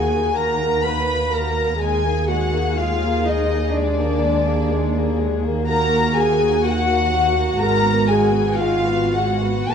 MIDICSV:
0, 0, Header, 1, 6, 480
1, 0, Start_track
1, 0, Key_signature, -6, "minor"
1, 0, Tempo, 970874
1, 887, Time_signature, 4, 2, 24, 8
1, 4245, Tempo, 1140684
1, 4733, End_track
2, 0, Start_track
2, 0, Title_t, "Violin section"
2, 0, Program_c, 0, 48
2, 0, Note_on_c, 0, 80, 57
2, 168, Note_off_c, 0, 80, 0
2, 174, Note_on_c, 0, 82, 60
2, 407, Note_on_c, 0, 83, 60
2, 412, Note_off_c, 0, 82, 0
2, 646, Note_off_c, 0, 83, 0
2, 653, Note_on_c, 0, 82, 60
2, 889, Note_off_c, 0, 82, 0
2, 893, Note_on_c, 0, 80, 60
2, 1130, Note_off_c, 0, 80, 0
2, 1134, Note_on_c, 0, 78, 58
2, 1366, Note_off_c, 0, 78, 0
2, 1373, Note_on_c, 0, 77, 58
2, 1612, Note_off_c, 0, 77, 0
2, 1612, Note_on_c, 0, 75, 57
2, 1850, Note_off_c, 0, 75, 0
2, 1850, Note_on_c, 0, 74, 61
2, 2563, Note_off_c, 0, 74, 0
2, 2805, Note_on_c, 0, 82, 75
2, 3030, Note_off_c, 0, 82, 0
2, 3043, Note_on_c, 0, 80, 72
2, 3284, Note_off_c, 0, 80, 0
2, 3289, Note_on_c, 0, 78, 73
2, 3753, Note_on_c, 0, 82, 77
2, 3760, Note_off_c, 0, 78, 0
2, 3989, Note_off_c, 0, 82, 0
2, 3997, Note_on_c, 0, 80, 59
2, 4239, Note_on_c, 0, 77, 66
2, 4246, Note_off_c, 0, 80, 0
2, 4477, Note_off_c, 0, 77, 0
2, 4480, Note_on_c, 0, 78, 52
2, 4726, Note_off_c, 0, 78, 0
2, 4733, End_track
3, 0, Start_track
3, 0, Title_t, "Viola section"
3, 0, Program_c, 1, 48
3, 0, Note_on_c, 1, 68, 48
3, 168, Note_off_c, 1, 68, 0
3, 172, Note_on_c, 1, 70, 50
3, 406, Note_off_c, 1, 70, 0
3, 408, Note_on_c, 1, 71, 53
3, 646, Note_on_c, 1, 70, 47
3, 647, Note_off_c, 1, 71, 0
3, 883, Note_on_c, 1, 68, 54
3, 886, Note_off_c, 1, 70, 0
3, 1120, Note_off_c, 1, 68, 0
3, 1127, Note_on_c, 1, 66, 51
3, 1365, Note_on_c, 1, 65, 54
3, 1368, Note_off_c, 1, 66, 0
3, 1606, Note_on_c, 1, 63, 48
3, 1608, Note_off_c, 1, 65, 0
3, 1845, Note_on_c, 1, 62, 49
3, 1847, Note_off_c, 1, 63, 0
3, 2561, Note_off_c, 1, 62, 0
3, 2800, Note_on_c, 1, 70, 59
3, 3027, Note_off_c, 1, 70, 0
3, 3045, Note_on_c, 1, 68, 57
3, 3285, Note_off_c, 1, 68, 0
3, 3285, Note_on_c, 1, 66, 59
3, 3752, Note_on_c, 1, 70, 62
3, 3758, Note_off_c, 1, 66, 0
3, 3992, Note_on_c, 1, 68, 49
3, 3994, Note_off_c, 1, 70, 0
3, 4239, Note_on_c, 1, 65, 55
3, 4243, Note_off_c, 1, 68, 0
3, 4472, Note_off_c, 1, 65, 0
3, 4474, Note_on_c, 1, 66, 42
3, 4723, Note_off_c, 1, 66, 0
3, 4733, End_track
4, 0, Start_track
4, 0, Title_t, "Violin section"
4, 0, Program_c, 2, 48
4, 0, Note_on_c, 2, 66, 34
4, 49, Note_on_c, 2, 58, 34
4, 166, Note_off_c, 2, 58, 0
4, 172, Note_on_c, 2, 58, 38
4, 287, Note_off_c, 2, 58, 0
4, 293, Note_on_c, 2, 58, 37
4, 411, Note_off_c, 2, 58, 0
4, 417, Note_on_c, 2, 58, 41
4, 527, Note_off_c, 2, 58, 0
4, 533, Note_on_c, 2, 58, 36
4, 648, Note_off_c, 2, 58, 0
4, 654, Note_on_c, 2, 58, 36
4, 770, Note_off_c, 2, 58, 0
4, 776, Note_on_c, 2, 58, 36
4, 864, Note_off_c, 2, 66, 0
4, 890, Note_on_c, 2, 56, 42
4, 891, Note_off_c, 2, 58, 0
4, 894, Note_on_c, 2, 68, 43
4, 1000, Note_off_c, 2, 56, 0
4, 1016, Note_on_c, 2, 58, 38
4, 1131, Note_off_c, 2, 58, 0
4, 1133, Note_on_c, 2, 56, 41
4, 1250, Note_off_c, 2, 56, 0
4, 1254, Note_on_c, 2, 58, 40
4, 1371, Note_off_c, 2, 58, 0
4, 1378, Note_on_c, 2, 56, 43
4, 1494, Note_off_c, 2, 56, 0
4, 1500, Note_on_c, 2, 58, 39
4, 1615, Note_off_c, 2, 58, 0
4, 1618, Note_on_c, 2, 56, 43
4, 1734, Note_off_c, 2, 56, 0
4, 1741, Note_on_c, 2, 58, 43
4, 1854, Note_off_c, 2, 58, 0
4, 1856, Note_on_c, 2, 56, 45
4, 1963, Note_off_c, 2, 56, 0
4, 1976, Note_on_c, 2, 58, 42
4, 2089, Note_off_c, 2, 58, 0
4, 2097, Note_on_c, 2, 56, 44
4, 2209, Note_off_c, 2, 56, 0
4, 2215, Note_on_c, 2, 58, 48
4, 2327, Note_off_c, 2, 58, 0
4, 2331, Note_on_c, 2, 56, 49
4, 2446, Note_off_c, 2, 56, 0
4, 2452, Note_on_c, 2, 58, 44
4, 2568, Note_off_c, 2, 58, 0
4, 2574, Note_on_c, 2, 56, 42
4, 2690, Note_off_c, 2, 56, 0
4, 2695, Note_on_c, 2, 58, 46
4, 2789, Note_off_c, 2, 68, 0
4, 2806, Note_off_c, 2, 58, 0
4, 2812, Note_on_c, 2, 58, 50
4, 2813, Note_on_c, 2, 66, 50
4, 2921, Note_off_c, 2, 58, 0
4, 2928, Note_on_c, 2, 58, 43
4, 3037, Note_off_c, 2, 58, 0
4, 3043, Note_on_c, 2, 58, 49
4, 3161, Note_off_c, 2, 58, 0
4, 3167, Note_on_c, 2, 58, 45
4, 3281, Note_off_c, 2, 58, 0
4, 3286, Note_on_c, 2, 58, 51
4, 3396, Note_off_c, 2, 58, 0
4, 3402, Note_on_c, 2, 58, 43
4, 3519, Note_off_c, 2, 58, 0
4, 3525, Note_on_c, 2, 58, 44
4, 3630, Note_off_c, 2, 58, 0
4, 3636, Note_on_c, 2, 58, 42
4, 3756, Note_off_c, 2, 58, 0
4, 3760, Note_on_c, 2, 56, 45
4, 3870, Note_off_c, 2, 56, 0
4, 3872, Note_on_c, 2, 59, 39
4, 3994, Note_off_c, 2, 59, 0
4, 3995, Note_on_c, 2, 56, 46
4, 4118, Note_off_c, 2, 56, 0
4, 4118, Note_on_c, 2, 59, 40
4, 4245, Note_off_c, 2, 59, 0
4, 4247, Note_on_c, 2, 56, 41
4, 4357, Note_on_c, 2, 59, 38
4, 4360, Note_off_c, 2, 56, 0
4, 4478, Note_on_c, 2, 56, 40
4, 4479, Note_off_c, 2, 59, 0
4, 4601, Note_on_c, 2, 59, 36
4, 4603, Note_off_c, 2, 56, 0
4, 4725, Note_off_c, 2, 59, 0
4, 4733, Note_off_c, 2, 66, 0
4, 4733, End_track
5, 0, Start_track
5, 0, Title_t, "Cello section"
5, 0, Program_c, 3, 48
5, 0, Note_on_c, 3, 39, 37
5, 867, Note_off_c, 3, 39, 0
5, 883, Note_on_c, 3, 39, 43
5, 3737, Note_off_c, 3, 39, 0
5, 3756, Note_on_c, 3, 44, 52
5, 4708, Note_off_c, 3, 44, 0
5, 4733, End_track
6, 0, Start_track
6, 0, Title_t, "Double bass section"
6, 0, Program_c, 4, 48
6, 0, Note_on_c, 4, 39, 39
6, 866, Note_off_c, 4, 39, 0
6, 881, Note_on_c, 4, 39, 46
6, 3736, Note_off_c, 4, 39, 0
6, 3752, Note_on_c, 4, 32, 52
6, 4706, Note_off_c, 4, 32, 0
6, 4733, End_track
0, 0, End_of_file